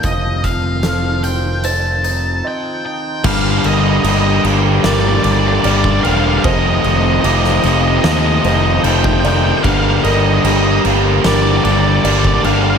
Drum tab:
CC |----------------|x-x-x-x-x-x-x-x-|x-x-x-x-x-x-x-x-|x-x-x-x-x-x-x-x-|
HH |x-x-x-x-x-x-----|----------------|----------------|----------------|
SD |----o-----------|--------o-------|-----o--o-------|--------o-------|
BD |o-o-------------|o------------o--|o------------o--|o------------o--|